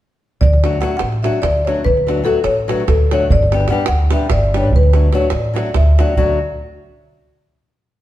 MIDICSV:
0, 0, Header, 1, 5, 480
1, 0, Start_track
1, 0, Key_signature, 2, "major"
1, 0, Tempo, 410678
1, 494, Time_signature, 7, 3, 24, 8
1, 9368, End_track
2, 0, Start_track
2, 0, Title_t, "Marimba"
2, 0, Program_c, 0, 12
2, 478, Note_on_c, 0, 74, 97
2, 943, Note_on_c, 0, 78, 75
2, 963, Note_off_c, 0, 74, 0
2, 1118, Note_off_c, 0, 78, 0
2, 1132, Note_on_c, 0, 78, 84
2, 1417, Note_off_c, 0, 78, 0
2, 1434, Note_on_c, 0, 76, 63
2, 1658, Note_on_c, 0, 74, 93
2, 1668, Note_off_c, 0, 76, 0
2, 1927, Note_on_c, 0, 73, 67
2, 1963, Note_off_c, 0, 74, 0
2, 2145, Note_off_c, 0, 73, 0
2, 2157, Note_on_c, 0, 71, 103
2, 2625, Note_on_c, 0, 69, 81
2, 2644, Note_off_c, 0, 71, 0
2, 2846, Note_off_c, 0, 69, 0
2, 2850, Note_on_c, 0, 73, 88
2, 3137, Note_on_c, 0, 71, 62
2, 3145, Note_off_c, 0, 73, 0
2, 3338, Note_off_c, 0, 71, 0
2, 3362, Note_on_c, 0, 69, 69
2, 3626, Note_off_c, 0, 69, 0
2, 3647, Note_on_c, 0, 73, 84
2, 3867, Note_off_c, 0, 73, 0
2, 3880, Note_on_c, 0, 74, 98
2, 4298, Note_off_c, 0, 74, 0
2, 4322, Note_on_c, 0, 78, 69
2, 4513, Note_off_c, 0, 78, 0
2, 4535, Note_on_c, 0, 78, 99
2, 4823, Note_on_c, 0, 76, 75
2, 4827, Note_off_c, 0, 78, 0
2, 4918, Note_off_c, 0, 76, 0
2, 5045, Note_on_c, 0, 74, 89
2, 5334, Note_off_c, 0, 74, 0
2, 5348, Note_on_c, 0, 73, 72
2, 5536, Note_off_c, 0, 73, 0
2, 5562, Note_on_c, 0, 71, 90
2, 6014, Note_on_c, 0, 73, 75
2, 6023, Note_off_c, 0, 71, 0
2, 6218, Note_off_c, 0, 73, 0
2, 6224, Note_on_c, 0, 74, 68
2, 6483, Note_off_c, 0, 74, 0
2, 6522, Note_on_c, 0, 74, 49
2, 6730, Note_off_c, 0, 74, 0
2, 6735, Note_on_c, 0, 76, 74
2, 7014, Note_on_c, 0, 74, 65
2, 7018, Note_off_c, 0, 76, 0
2, 7207, Note_off_c, 0, 74, 0
2, 7222, Note_on_c, 0, 74, 77
2, 7455, Note_off_c, 0, 74, 0
2, 9368, End_track
3, 0, Start_track
3, 0, Title_t, "Nylon-string guitar"
3, 0, Program_c, 1, 24
3, 741, Note_on_c, 1, 54, 43
3, 747, Note_on_c, 1, 57, 40
3, 755, Note_on_c, 1, 62, 39
3, 760, Note_on_c, 1, 66, 51
3, 899, Note_off_c, 1, 54, 0
3, 902, Note_off_c, 1, 57, 0
3, 906, Note_off_c, 1, 62, 0
3, 909, Note_off_c, 1, 66, 0
3, 941, Note_on_c, 1, 54, 57
3, 951, Note_on_c, 1, 57, 54
3, 961, Note_on_c, 1, 62, 49
3, 968, Note_on_c, 1, 66, 72
3, 1104, Note_off_c, 1, 54, 0
3, 1107, Note_off_c, 1, 57, 0
3, 1113, Note_off_c, 1, 62, 0
3, 1116, Note_off_c, 1, 66, 0
3, 1441, Note_on_c, 1, 54, 44
3, 1454, Note_on_c, 1, 57, 51
3, 1457, Note_on_c, 1, 62, 43
3, 1467, Note_on_c, 1, 66, 58
3, 1609, Note_off_c, 1, 54, 0
3, 1615, Note_off_c, 1, 57, 0
3, 1616, Note_off_c, 1, 62, 0
3, 1621, Note_off_c, 1, 66, 0
3, 1955, Note_on_c, 1, 54, 58
3, 1964, Note_on_c, 1, 57, 44
3, 1969, Note_on_c, 1, 62, 53
3, 1974, Note_on_c, 1, 66, 49
3, 2118, Note_off_c, 1, 54, 0
3, 2123, Note_off_c, 1, 57, 0
3, 2126, Note_off_c, 1, 62, 0
3, 2127, Note_off_c, 1, 66, 0
3, 2415, Note_on_c, 1, 54, 51
3, 2425, Note_on_c, 1, 57, 42
3, 2439, Note_on_c, 1, 62, 48
3, 2440, Note_on_c, 1, 66, 50
3, 2577, Note_off_c, 1, 54, 0
3, 2582, Note_off_c, 1, 57, 0
3, 2588, Note_off_c, 1, 66, 0
3, 2589, Note_off_c, 1, 62, 0
3, 2613, Note_on_c, 1, 54, 60
3, 2622, Note_on_c, 1, 57, 50
3, 2628, Note_on_c, 1, 62, 59
3, 2635, Note_on_c, 1, 66, 77
3, 2779, Note_off_c, 1, 54, 0
3, 2784, Note_off_c, 1, 57, 0
3, 2786, Note_off_c, 1, 62, 0
3, 2791, Note_off_c, 1, 66, 0
3, 3130, Note_on_c, 1, 54, 64
3, 3141, Note_on_c, 1, 57, 49
3, 3142, Note_on_c, 1, 62, 56
3, 3149, Note_on_c, 1, 66, 59
3, 3293, Note_off_c, 1, 54, 0
3, 3298, Note_off_c, 1, 57, 0
3, 3298, Note_off_c, 1, 62, 0
3, 3302, Note_off_c, 1, 66, 0
3, 3639, Note_on_c, 1, 54, 57
3, 3648, Note_on_c, 1, 57, 56
3, 3653, Note_on_c, 1, 62, 44
3, 3659, Note_on_c, 1, 66, 61
3, 3800, Note_off_c, 1, 54, 0
3, 3805, Note_off_c, 1, 57, 0
3, 3807, Note_off_c, 1, 62, 0
3, 3810, Note_off_c, 1, 66, 0
3, 4122, Note_on_c, 1, 55, 39
3, 4122, Note_on_c, 1, 59, 37
3, 4130, Note_on_c, 1, 62, 43
3, 4137, Note_on_c, 1, 67, 58
3, 4269, Note_off_c, 1, 59, 0
3, 4270, Note_off_c, 1, 55, 0
3, 4274, Note_off_c, 1, 62, 0
3, 4277, Note_off_c, 1, 67, 0
3, 4325, Note_on_c, 1, 55, 70
3, 4329, Note_on_c, 1, 59, 58
3, 4334, Note_on_c, 1, 62, 65
3, 4349, Note_on_c, 1, 67, 68
3, 4476, Note_off_c, 1, 55, 0
3, 4476, Note_off_c, 1, 59, 0
3, 4477, Note_off_c, 1, 62, 0
3, 4487, Note_off_c, 1, 67, 0
3, 4805, Note_on_c, 1, 55, 64
3, 4812, Note_on_c, 1, 59, 54
3, 4814, Note_on_c, 1, 62, 48
3, 4833, Note_on_c, 1, 67, 69
3, 4970, Note_off_c, 1, 55, 0
3, 4972, Note_off_c, 1, 59, 0
3, 4974, Note_off_c, 1, 62, 0
3, 4983, Note_off_c, 1, 67, 0
3, 5307, Note_on_c, 1, 55, 57
3, 5313, Note_on_c, 1, 59, 41
3, 5324, Note_on_c, 1, 62, 53
3, 5331, Note_on_c, 1, 67, 62
3, 5473, Note_off_c, 1, 55, 0
3, 5476, Note_off_c, 1, 59, 0
3, 5482, Note_off_c, 1, 62, 0
3, 5484, Note_off_c, 1, 67, 0
3, 5768, Note_on_c, 1, 54, 42
3, 5774, Note_on_c, 1, 57, 38
3, 5783, Note_on_c, 1, 62, 36
3, 5790, Note_on_c, 1, 66, 51
3, 5931, Note_off_c, 1, 54, 0
3, 5934, Note_off_c, 1, 57, 0
3, 5939, Note_off_c, 1, 62, 0
3, 5943, Note_off_c, 1, 66, 0
3, 5991, Note_on_c, 1, 54, 64
3, 5994, Note_on_c, 1, 57, 57
3, 6005, Note_on_c, 1, 62, 56
3, 6017, Note_on_c, 1, 66, 74
3, 6147, Note_off_c, 1, 54, 0
3, 6147, Note_off_c, 1, 57, 0
3, 6153, Note_off_c, 1, 62, 0
3, 6159, Note_off_c, 1, 66, 0
3, 6469, Note_on_c, 1, 54, 56
3, 6482, Note_on_c, 1, 57, 49
3, 6485, Note_on_c, 1, 62, 47
3, 6495, Note_on_c, 1, 66, 58
3, 6641, Note_off_c, 1, 54, 0
3, 6647, Note_off_c, 1, 57, 0
3, 6648, Note_off_c, 1, 62, 0
3, 6654, Note_off_c, 1, 66, 0
3, 6991, Note_on_c, 1, 54, 49
3, 7001, Note_on_c, 1, 57, 50
3, 7004, Note_on_c, 1, 62, 50
3, 7018, Note_on_c, 1, 66, 62
3, 7154, Note_off_c, 1, 54, 0
3, 7160, Note_off_c, 1, 57, 0
3, 7160, Note_off_c, 1, 62, 0
3, 7167, Note_off_c, 1, 66, 0
3, 7215, Note_on_c, 1, 57, 59
3, 7216, Note_on_c, 1, 66, 69
3, 7217, Note_on_c, 1, 54, 74
3, 7224, Note_on_c, 1, 62, 62
3, 7450, Note_off_c, 1, 66, 0
3, 7451, Note_off_c, 1, 57, 0
3, 7453, Note_off_c, 1, 54, 0
3, 7455, Note_off_c, 1, 62, 0
3, 9368, End_track
4, 0, Start_track
4, 0, Title_t, "Upright bass"
4, 0, Program_c, 2, 32
4, 496, Note_on_c, 2, 38, 98
4, 898, Note_off_c, 2, 38, 0
4, 1170, Note_on_c, 2, 33, 88
4, 1473, Note_off_c, 2, 33, 0
4, 1666, Note_on_c, 2, 38, 88
4, 1972, Note_off_c, 2, 38, 0
4, 2176, Note_on_c, 2, 38, 89
4, 2578, Note_off_c, 2, 38, 0
4, 2850, Note_on_c, 2, 33, 75
4, 3152, Note_off_c, 2, 33, 0
4, 3362, Note_on_c, 2, 38, 85
4, 3863, Note_on_c, 2, 31, 101
4, 3880, Note_off_c, 2, 38, 0
4, 4262, Note_off_c, 2, 31, 0
4, 4539, Note_on_c, 2, 38, 76
4, 4838, Note_off_c, 2, 38, 0
4, 5039, Note_on_c, 2, 31, 93
4, 5543, Note_off_c, 2, 31, 0
4, 5543, Note_on_c, 2, 38, 90
4, 5942, Note_off_c, 2, 38, 0
4, 6216, Note_on_c, 2, 33, 87
4, 6515, Note_off_c, 2, 33, 0
4, 6725, Note_on_c, 2, 38, 78
4, 7023, Note_off_c, 2, 38, 0
4, 7223, Note_on_c, 2, 38, 81
4, 7455, Note_off_c, 2, 38, 0
4, 9368, End_track
5, 0, Start_track
5, 0, Title_t, "Davul"
5, 483, Note_on_c, 9, 43, 85
5, 600, Note_off_c, 9, 43, 0
5, 624, Note_on_c, 9, 37, 26
5, 741, Note_off_c, 9, 37, 0
5, 745, Note_on_c, 9, 37, 57
5, 852, Note_off_c, 9, 37, 0
5, 852, Note_on_c, 9, 37, 23
5, 954, Note_off_c, 9, 37, 0
5, 954, Note_on_c, 9, 37, 56
5, 1071, Note_off_c, 9, 37, 0
5, 1161, Note_on_c, 9, 37, 68
5, 1278, Note_off_c, 9, 37, 0
5, 1313, Note_on_c, 9, 37, 24
5, 1430, Note_off_c, 9, 37, 0
5, 1452, Note_on_c, 9, 37, 58
5, 1547, Note_off_c, 9, 37, 0
5, 1547, Note_on_c, 9, 37, 21
5, 1664, Note_off_c, 9, 37, 0
5, 1675, Note_on_c, 9, 37, 64
5, 1675, Note_on_c, 9, 43, 46
5, 1792, Note_off_c, 9, 37, 0
5, 1792, Note_off_c, 9, 43, 0
5, 1956, Note_on_c, 9, 37, 47
5, 2058, Note_off_c, 9, 37, 0
5, 2058, Note_on_c, 9, 37, 20
5, 2170, Note_on_c, 9, 43, 74
5, 2175, Note_off_c, 9, 37, 0
5, 2287, Note_off_c, 9, 43, 0
5, 2305, Note_on_c, 9, 37, 23
5, 2422, Note_off_c, 9, 37, 0
5, 2436, Note_on_c, 9, 37, 51
5, 2541, Note_off_c, 9, 37, 0
5, 2541, Note_on_c, 9, 37, 20
5, 2643, Note_off_c, 9, 37, 0
5, 2643, Note_on_c, 9, 37, 42
5, 2760, Note_off_c, 9, 37, 0
5, 2854, Note_on_c, 9, 37, 62
5, 2971, Note_off_c, 9, 37, 0
5, 2992, Note_on_c, 9, 37, 19
5, 3109, Note_off_c, 9, 37, 0
5, 3147, Note_on_c, 9, 37, 58
5, 3264, Note_off_c, 9, 37, 0
5, 3274, Note_on_c, 9, 37, 21
5, 3367, Note_off_c, 9, 37, 0
5, 3367, Note_on_c, 9, 37, 64
5, 3367, Note_on_c, 9, 43, 62
5, 3484, Note_off_c, 9, 37, 0
5, 3484, Note_off_c, 9, 43, 0
5, 3640, Note_on_c, 9, 37, 56
5, 3748, Note_off_c, 9, 37, 0
5, 3748, Note_on_c, 9, 37, 22
5, 3861, Note_on_c, 9, 43, 86
5, 3865, Note_off_c, 9, 37, 0
5, 3978, Note_off_c, 9, 43, 0
5, 4004, Note_on_c, 9, 37, 26
5, 4114, Note_off_c, 9, 37, 0
5, 4114, Note_on_c, 9, 37, 61
5, 4213, Note_off_c, 9, 37, 0
5, 4213, Note_on_c, 9, 37, 27
5, 4297, Note_off_c, 9, 37, 0
5, 4297, Note_on_c, 9, 37, 58
5, 4414, Note_off_c, 9, 37, 0
5, 4510, Note_on_c, 9, 37, 75
5, 4627, Note_off_c, 9, 37, 0
5, 4661, Note_on_c, 9, 37, 21
5, 4778, Note_off_c, 9, 37, 0
5, 4798, Note_on_c, 9, 37, 67
5, 4901, Note_off_c, 9, 37, 0
5, 4901, Note_on_c, 9, 37, 23
5, 5018, Note_off_c, 9, 37, 0
5, 5021, Note_on_c, 9, 37, 72
5, 5021, Note_on_c, 9, 43, 58
5, 5138, Note_off_c, 9, 37, 0
5, 5138, Note_off_c, 9, 43, 0
5, 5310, Note_on_c, 9, 37, 61
5, 5417, Note_off_c, 9, 37, 0
5, 5417, Note_on_c, 9, 37, 25
5, 5523, Note_on_c, 9, 43, 78
5, 5534, Note_off_c, 9, 37, 0
5, 5640, Note_off_c, 9, 43, 0
5, 5648, Note_on_c, 9, 37, 21
5, 5765, Note_off_c, 9, 37, 0
5, 5767, Note_on_c, 9, 37, 58
5, 5884, Note_off_c, 9, 37, 0
5, 5991, Note_on_c, 9, 37, 49
5, 6097, Note_off_c, 9, 37, 0
5, 6097, Note_on_c, 9, 37, 21
5, 6197, Note_off_c, 9, 37, 0
5, 6197, Note_on_c, 9, 37, 64
5, 6314, Note_off_c, 9, 37, 0
5, 6358, Note_on_c, 9, 37, 21
5, 6475, Note_off_c, 9, 37, 0
5, 6504, Note_on_c, 9, 37, 59
5, 6617, Note_off_c, 9, 37, 0
5, 6617, Note_on_c, 9, 37, 22
5, 6714, Note_off_c, 9, 37, 0
5, 6714, Note_on_c, 9, 37, 65
5, 6714, Note_on_c, 9, 43, 59
5, 6830, Note_off_c, 9, 37, 0
5, 6830, Note_off_c, 9, 43, 0
5, 6882, Note_on_c, 9, 37, 20
5, 6999, Note_off_c, 9, 37, 0
5, 6999, Note_on_c, 9, 37, 54
5, 7116, Note_off_c, 9, 37, 0
5, 7122, Note_on_c, 9, 37, 22
5, 7208, Note_on_c, 9, 43, 59
5, 7239, Note_off_c, 9, 37, 0
5, 7325, Note_off_c, 9, 43, 0
5, 9368, End_track
0, 0, End_of_file